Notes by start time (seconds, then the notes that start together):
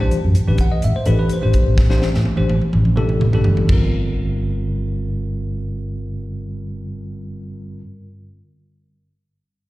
0.00 E3 A3 D4 G4 C5
0.11 closed hi-hat
0.22 F#2 G4 B4
0.35 closed hi-hat
0.47 A1 E3 A3 D4 G4 B4
0.58 F#5, kick, closed hi-hat
0.72 G4 A4 D#5, muted fretless electric bass stroke
0.82 A1 E5, closed hi-hat
0.96 C5, muted fretless electric bass stroke
1.05 A1 E3 A3 D4 G4 A4 B4, closed hi-hat
1.19 B4
1.29 C5, closed hi-hat
1.42 A1 E3 A3 D4 G4 C5
1.53 kick, closed hi-hat
1.67 A1
1.78 A1, kick, snare
1.90 E3 A3 D4 G4 C5, snare
2.02 snare
2.14 A2 G4 C5, snare
2.25 muted fretless electric bass stroke, high tom
2.36 A1 E3 A3 D4 G4 C5, high tom
2.50 high tom
2.61 G4 C5, mid tom
2.73 A1, mid tom
2.85 mid tom
2.96 E3 A3 D4 G4 A4, mid tom
3.09 mid tom
3.21 A1, mid tom
3.33 E3 A3 D4 G4 A4, floor tom
3.44 G1, floor tom
3.57 floor tom
3.67 G1 D3 G3 C4 F4, kick, crash
3.72 A#4